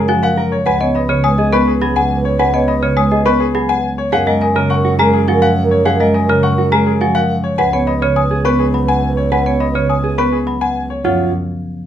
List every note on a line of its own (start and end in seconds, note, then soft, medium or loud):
0.00 0.51 F#2 medium
0.00 0.13 G#4 medium
0.00 0.13 A#4 soft
0.08 0.28 F3 medium
0.08 0.27 F#4 medium
0.08 0.27 G#5 medium
0.22 0.43 A#4 soft
0.22 0.42 F5 medium
0.22 0.42 F#5 medium
0.38 0.56 A#4 medium
0.52 0.71 C#5 medium
0.66 3.97 C#2 medium
0.66 0.81 B4 medium
0.66 0.87 B4 soft
0.66 0.85 F#5 medium
0.66 0.85 G#5 medium
0.80 0.99 B3 medium
0.80 1.00 C#5 medium
0.80 0.99 D#5 medium
0.95 1.18 B4 soft
0.95 1.14 D#5 medium
0.95 1.14 B5 medium
1.09 1.28 C#3 medium
1.09 1.28 C#5 medium
1.24 1.43 G#3 medium
1.24 1.48 B4 medium
1.24 1.43 G#5 medium
1.24 1.43 D#6 medium
1.38 1.57 G#4 medium
1.38 1.57 D#5 medium
1.53 1.71 B3 medium
1.53 1.72 B4 medium
1.53 1.72 C#6 medium
1.57 1.78 B4 medium
1.67 1.86 G#4 medium
1.81 2.00 F#3 medium
1.81 2.00 G#4 medium
1.81 2.00 B5 medium
1.87 2.08 B4 medium
1.96 2.15 F#5 medium
1.96 2.15 G#5 medium
2.17 2.38 B4 medium
2.25 2.44 C#5 medium
2.39 2.54 B4 medium
2.39 2.58 F#5 medium
2.39 2.58 G#5 medium
2.47 2.68 B4 medium
2.54 2.73 B3 medium
2.54 2.73 C#5 medium
2.54 2.73 D#5 medium
2.68 2.87 D#5 medium
2.68 2.87 B5 medium
2.77 2.99 B4 medium
2.83 3.01 C#3 medium
2.83 3.01 C#5 medium
2.97 3.16 G#3 medium
2.97 3.16 G#5 medium
2.97 3.16 D#6 medium
3.08 3.25 G#4 medium
3.08 3.29 B4 medium
3.08 3.30 D#5 medium
3.26 3.45 B3 medium
3.26 3.45 B4 medium
3.26 3.45 C#6 medium
3.38 3.59 G#4 medium
3.38 3.59 B4 soft
3.55 3.74 F#3 medium
3.55 3.74 G#4 medium
3.55 3.73 B5 medium
3.68 3.89 B4 soft
3.68 3.88 F#5 medium
3.68 3.88 G#5 medium
3.98 4.17 C#5 medium
4.12 7.43 F#2 medium
4.12 4.27 G#4 medium
4.12 4.34 A#4 soft
4.12 4.31 F5 medium
4.12 4.31 F#5 medium
4.27 4.46 G#3 medium
4.27 4.46 A#4 medium
4.27 4.46 D#5 medium
4.41 4.64 A#4 soft
4.41 4.60 D#5 medium
4.41 4.60 G#5 medium
4.56 4.75 C#3 medium
4.56 4.74 A#4 medium
4.70 4.94 A#4 medium
4.70 4.89 F#5 medium
4.70 4.89 C#6 medium
4.85 4.99 F#4 medium
4.99 5.18 G#3 medium
4.99 5.18 G#4 medium
4.99 5.18 A#4 medium
4.99 5.24 A#4 medium
4.99 5.18 A#5 medium
5.13 5.32 G#4 medium
5.28 5.47 F3 medium
5.28 5.47 F#4 medium
5.28 5.47 G#5 medium
5.33 5.54 A#4 medium
5.42 5.61 F5 medium
5.42 5.61 F#5 medium
5.64 5.85 A#4 medium
5.71 5.90 C#5 medium
5.85 6.00 G#4 medium
5.85 6.04 F5 medium
5.85 6.04 F#5 medium
5.94 6.15 A#4 medium
6.00 6.19 G#3 medium
6.00 6.19 A#4 medium
6.00 6.19 D#5 medium
6.14 6.33 D#5 medium
6.14 6.33 G#5 medium
6.24 6.45 A#4 medium
6.29 6.48 C#3 medium
6.29 6.48 A#4 medium
6.43 6.62 F#5 medium
6.43 6.62 C#6 medium
6.54 6.72 F#4 medium
6.54 6.75 A#4 medium
6.72 6.91 G#3 medium
6.72 6.91 G#4 medium
6.72 6.91 A#4 medium
6.72 6.91 A#5 medium
6.84 7.05 G#4 medium
6.84 7.05 A#4 soft
7.01 7.20 F3 medium
7.01 7.20 F#4 medium
7.01 7.20 G#5 medium
7.14 7.35 A#4 soft
7.14 7.34 F5 medium
7.14 7.34 F#5 medium
7.44 7.63 C#5 medium
7.58 10.89 C#2 medium
7.58 7.73 B4 medium
7.58 7.80 B4 soft
7.58 7.77 F#5 medium
7.58 7.77 G#5 medium
7.73 7.92 B3 medium
7.73 7.92 C#5 medium
7.87 8.10 B4 soft
7.87 8.06 D#5 medium
7.87 8.06 B5 medium
8.02 8.21 C#3 medium
8.02 8.21 C#5 medium
8.16 8.40 B4 medium
8.16 8.35 G#5 medium
8.16 8.35 D#6 medium
8.31 8.50 G#4 medium
8.45 8.64 B3 medium
8.45 8.64 B4 medium
8.45 8.64 C#6 medium
8.49 8.70 B4 medium
8.59 8.78 G#4 medium
8.74 8.93 F#3 medium
8.74 8.93 B5 medium
8.79 9.01 B4 medium
8.88 9.07 F#5 medium
8.88 9.07 G#5 medium
9.10 9.31 B4 medium
9.17 9.36 C#5 medium
9.32 9.46 B4 medium
9.32 9.50 F#5 medium
9.32 9.50 G#5 medium
9.40 9.61 B4 medium
9.46 9.65 B3 medium
9.46 9.65 C#5 medium
9.60 9.79 D#5 medium
9.60 9.79 B5 medium
9.70 9.91 B4 medium
9.75 9.94 C#3 medium
9.75 9.94 C#5 medium
9.89 10.08 G#5 medium
9.89 10.08 D#6 medium
10.00 10.23 G#4 soft
10.00 10.21 B4 soft
10.18 10.37 B3 medium
10.18 10.37 B4 medium
10.18 10.37 C#6 medium
10.30 10.51 G#4 soft
10.30 10.51 B4 soft
10.47 10.66 F#3 medium
10.47 10.66 B5 medium
10.61 10.82 B4 soft
10.61 10.80 F#5 medium
10.61 10.80 G#5 medium
10.90 11.03 C#5 medium
11.04 11.32 F#2 soft
11.04 11.32 F3 medium
11.04 11.32 F4 medium
11.04 11.32 C#5 medium
11.04 11.31 F#5 medium